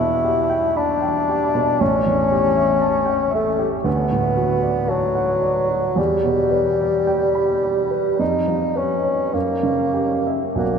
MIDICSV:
0, 0, Header, 1, 3, 480
1, 0, Start_track
1, 0, Tempo, 1038062
1, 837, Time_signature, 4, 2, 24, 8
1, 2268, Tempo, 1077199
1, 2748, Tempo, 1123596
1, 4188, Tempo, 1273885
1, 4729, End_track
2, 0, Start_track
2, 0, Title_t, "Grand piano"
2, 0, Program_c, 0, 0
2, 0, Control_c, 0, 64, 127
2, 0, Note_on_c, 0, 40, 40
2, 0, Note_on_c, 0, 47, 32
2, 113, Note_on_c, 0, 67, 37
2, 186, Note_off_c, 0, 47, 0
2, 230, Note_on_c, 0, 79, 41
2, 307, Note_off_c, 0, 67, 0
2, 354, Note_on_c, 0, 83, 38
2, 426, Note_off_c, 0, 79, 0
2, 470, Note_on_c, 0, 79, 37
2, 548, Note_off_c, 0, 83, 0
2, 597, Note_on_c, 0, 67, 36
2, 666, Note_off_c, 0, 79, 0
2, 716, Note_on_c, 0, 47, 39
2, 789, Note_off_c, 0, 67, 0
2, 820, Note_off_c, 0, 40, 0
2, 835, Note_on_c, 0, 33, 48
2, 837, Note_off_c, 0, 47, 0
2, 843, Control_c, 0, 64, 0
2, 919, Control_c, 0, 64, 127
2, 954, Note_on_c, 0, 40, 33
2, 1072, Note_on_c, 0, 67, 37
2, 1144, Note_off_c, 0, 40, 0
2, 1186, Note_on_c, 0, 76, 37
2, 1260, Note_off_c, 0, 67, 0
2, 1301, Note_on_c, 0, 81, 41
2, 1375, Note_off_c, 0, 76, 0
2, 1413, Note_on_c, 0, 79, 40
2, 1493, Note_off_c, 0, 81, 0
2, 1529, Note_on_c, 0, 76, 39
2, 1611, Note_off_c, 0, 79, 0
2, 1659, Note_on_c, 0, 67, 34
2, 1730, Note_off_c, 0, 76, 0
2, 1767, Note_off_c, 0, 33, 0
2, 1777, Note_on_c, 0, 38, 42
2, 1784, Note_off_c, 0, 67, 0
2, 1794, Control_c, 0, 64, 0
2, 1880, Control_c, 0, 64, 127
2, 1903, Note_on_c, 0, 45, 35
2, 2021, Note_on_c, 0, 66, 36
2, 2097, Note_off_c, 0, 45, 0
2, 2142, Note_on_c, 0, 74, 40
2, 2216, Note_off_c, 0, 66, 0
2, 2261, Note_on_c, 0, 81, 36
2, 2334, Note_off_c, 0, 74, 0
2, 2378, Note_on_c, 0, 78, 39
2, 2452, Note_off_c, 0, 81, 0
2, 2497, Note_on_c, 0, 74, 39
2, 2573, Note_off_c, 0, 78, 0
2, 2620, Note_on_c, 0, 66, 35
2, 2695, Note_off_c, 0, 74, 0
2, 2725, Note_off_c, 0, 38, 0
2, 2738, Note_on_c, 0, 40, 50
2, 2745, Note_off_c, 0, 66, 0
2, 2754, Control_c, 0, 64, 0
2, 2821, Control_c, 0, 64, 127
2, 2861, Note_on_c, 0, 47, 33
2, 2974, Note_on_c, 0, 71, 35
2, 3053, Note_off_c, 0, 47, 0
2, 3098, Note_on_c, 0, 74, 36
2, 3168, Note_off_c, 0, 71, 0
2, 3213, Note_on_c, 0, 79, 38
2, 3290, Note_off_c, 0, 74, 0
2, 3331, Note_on_c, 0, 83, 35
2, 3407, Note_off_c, 0, 79, 0
2, 3453, Note_on_c, 0, 74, 37
2, 3526, Note_off_c, 0, 83, 0
2, 3572, Note_on_c, 0, 71, 32
2, 3647, Note_off_c, 0, 74, 0
2, 3676, Note_off_c, 0, 40, 0
2, 3692, Note_on_c, 0, 41, 40
2, 3695, Note_off_c, 0, 71, 0
2, 3705, Control_c, 0, 64, 0
2, 3766, Control_c, 0, 64, 127
2, 3813, Note_on_c, 0, 53, 29
2, 3933, Note_on_c, 0, 71, 34
2, 4010, Note_off_c, 0, 53, 0
2, 4053, Note_on_c, 0, 73, 36
2, 4133, Note_off_c, 0, 71, 0
2, 4169, Note_off_c, 0, 41, 0
2, 4180, Note_on_c, 0, 42, 40
2, 4182, Note_off_c, 0, 73, 0
2, 4193, Control_c, 0, 64, 0
2, 4257, Control_c, 0, 64, 127
2, 4293, Note_on_c, 0, 49, 30
2, 4409, Note_on_c, 0, 67, 33
2, 4485, Note_off_c, 0, 49, 0
2, 4531, Note_on_c, 0, 76, 30
2, 4608, Note_off_c, 0, 67, 0
2, 4640, Note_on_c, 0, 35, 38
2, 4644, Note_on_c, 0, 66, 30
2, 4645, Note_off_c, 0, 42, 0
2, 4648, Note_on_c, 0, 74, 29
2, 4652, Note_on_c, 0, 78, 27
2, 4659, Note_off_c, 0, 76, 0
2, 4670, Control_c, 0, 64, 0
2, 4729, Note_off_c, 0, 35, 0
2, 4729, Note_off_c, 0, 66, 0
2, 4729, Note_off_c, 0, 74, 0
2, 4729, Note_off_c, 0, 78, 0
2, 4729, End_track
3, 0, Start_track
3, 0, Title_t, "Bassoon"
3, 0, Program_c, 1, 70
3, 0, Note_on_c, 1, 64, 67
3, 354, Note_on_c, 1, 62, 71
3, 361, Note_off_c, 1, 64, 0
3, 839, Note_on_c, 1, 61, 81
3, 845, Note_off_c, 1, 62, 0
3, 1544, Note_off_c, 1, 61, 0
3, 1546, Note_on_c, 1, 57, 60
3, 1700, Note_off_c, 1, 57, 0
3, 1778, Note_on_c, 1, 59, 68
3, 2263, Note_on_c, 1, 54, 65
3, 2270, Note_off_c, 1, 59, 0
3, 2748, Note_on_c, 1, 55, 72
3, 2754, Note_off_c, 1, 54, 0
3, 3692, Note_off_c, 1, 55, 0
3, 3695, Note_on_c, 1, 63, 65
3, 3941, Note_on_c, 1, 61, 52
3, 3947, Note_off_c, 1, 63, 0
3, 4182, Note_on_c, 1, 58, 56
3, 4188, Note_off_c, 1, 61, 0
3, 4534, Note_off_c, 1, 58, 0
3, 4654, Note_on_c, 1, 58, 64
3, 4729, Note_off_c, 1, 58, 0
3, 4729, End_track
0, 0, End_of_file